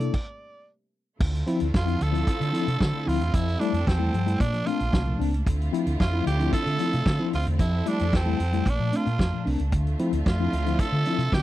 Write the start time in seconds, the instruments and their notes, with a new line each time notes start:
Already playing: string section C3 G3 A3 A#3 E4, tenor saxophone D5
0.00 tine electric piano A#3 D4 E4 A4, closed hi-hat
0.14 kick, crash
1.20 fingered electric bass D2, string section D3 A3 C4 E4 F4, tine electric piano D3, kick, crash
1.35 closed hi-hat
1.47 tine electric piano F3 C4 E4, closed hi-hat
1.60 fingered electric bass D2, tine electric piano C4 E4, closed hi-hat
1.74 fingered electric bass F2, tenor saxophone F4, kick, snare
1.86 tine electric piano F3 C4 E4, closed hi-hat
2.00 fingered electric bass D2, tine electric piano D3, tenor saxophone A4, closed hi-hat
2.12 tine electric piano F3 C4 E4, closed hi-hat
2.27 tine electric piano C4 E4, muted fingered electric bass stroke, kick, closed hi-hat
2.40 tine electric piano D3, fingered electric bass D3, closed hi-hat
2.53 tine electric piano F3 C4 E4, closed hi-hat
2.68 fingered electric bass C3, closed hi-hat
2.80 fingered electric bass D3, tine electric piano C4 E4, kick, snare
2.94 tine electric piano D3
3.06 fingered electric bass D2, tine electric piano F3 C4 E4, tenor saxophone F4, open hi-hat
3.20 fingered electric bass E2, closed hi-hat
3.33 fingered electric bass F2, tine electric piano F3, string section F3 G4 A4, tenor saxophone E4, kick, closed hi-hat
3.49 closed hi-hat
3.60 tine electric piano G3 A3 E4, tenor saxophone D4, closed hi-hat
3.73 fingered electric bass F2, tine electric piano A3 E4, closed hi-hat
3.87 fingered electric bass E2, tenor saxophone C4, kick, snare
3.99 tine electric piano G3 A3 E4
4.13 fingered electric bass G2, tine electric piano F3, closed hi-hat
4.27 tine electric piano G3 A3 E4, closed hi-hat
4.39 fingered electric bass A#2, string section A3 A#3 D4, tine electric piano C4 D4, tenor saxophone D4, kick, closed hi-hat
4.54 tine electric piano A#2 F3, closed hi-hat
4.66 tine electric piano A3 C4 D4, tenor saxophone F4, closed hi-hat
4.80 fingered electric bass A#1, closed hi-hat
4.93 fingered electric bass C2, tine electric piano C4 D4, kick, snare
5.06 tine electric piano A#2 F3
5.19 fingered electric bass C#2, tine electric piano A3 C4 D4, open hi-hat
5.34 closed hi-hat
5.45 fingered electric bass D2, string section D3 A3 C4 E4 F4, tine electric piano D3, kick, closed hi-hat
5.61 closed hi-hat
5.73 tine electric piano F3 C4 E4, closed hi-hat
5.86 fingered electric bass D2, tine electric piano C4 E4, closed hi-hat
6.00 fingered electric bass F2, tenor saxophone F4, kick, snare
6.13 tine electric piano F3 C4 E4
6.26 fingered electric bass D2, tine electric piano D3, tenor saxophone G4, closed hi-hat
6.40 tine electric piano F3 C4 E4, closed hi-hat
6.53 tine electric piano C4 E4, tenor saxophone A4, muted fingered electric bass stroke, kick, closed hi-hat
6.66 fingered electric bass D3, tine electric piano D3, closed hi-hat
6.79 tine electric piano F3 C4 E4, closed hi-hat
6.93 fingered electric bass C3, closed hi-hat
7.06 fingered electric bass D3, kick, snare
7.19 tine electric piano F3 C4 E4
7.32 fingered electric bass D2, tenor saxophone F4, snare, open hi-hat
7.46 fingered electric bass E2, tine electric piano D3, closed hi-hat
7.59 fingered electric bass F2, tine electric piano F3, string section F3 E4 G4 A4, tenor saxophone E4, kick, closed hi-hat
7.86 tine electric piano G3 A3 E4, tenor saxophone D4, closed hi-hat
7.99 fingered electric bass F2, tine electric piano A3 E4, closed hi-hat
8.13 fingered electric bass E2, tenor saxophone C4, kick, snare
8.25 tine electric piano G3 A3 E4
8.40 fingered electric bass F2, tine electric piano F3, closed hi-hat
8.53 tine electric piano G3 A3 E4, closed hi-hat
8.66 fingered electric bass A#1, string section A3 A#3 D4, tine electric piano C4 D4, tenor saxophone D4, kick, closed hi-hat
8.80 fingered electric bass A#2, tine electric piano A#2 F3
8.93 tine electric piano A3 C4 D4, tenor saxophone F4, closed hi-hat
9.06 fingered electric bass A#2, closed hi-hat
9.19 fingered electric bass F2, tine electric piano C4 D4, kick, snare
9.34 tine electric piano A#2 F3
9.45 fingered electric bass C2, tine electric piano A3 C4 D4, open hi-hat
9.59 fingered electric bass C#2, closed hi-hat
9.72 fingered electric bass D2, string section D3 C4 F4 E5, tine electric piano D3, kick, closed hi-hat
9.87 closed hi-hat
9.99 tine electric piano F3 C4 E4, closed hi-hat
10.13 fingered electric bass D2, tine electric piano C4, closed hi-hat
10.26 fingered electric bass F2, tenor saxophone F4, kick, snare
10.40 tine electric piano F3 C4 E4
10.53 fingered electric bass D2, tine electric piano D3, closed hi-hat
10.66 tine electric piano F3 C4 E4, closed hi-hat
10.79 tenor saxophone A4, muted fingered electric bass stroke, kick, closed hi-hat
10.92 fingered electric bass D3, tine electric piano D3
11.05 tine electric piano F3 C4 E4, closed hi-hat
11.18 fingered electric bass C3, closed hi-hat
11.32 fingered electric bass D3, tine electric piano C4 E4, tenor saxophone G4, kick, snare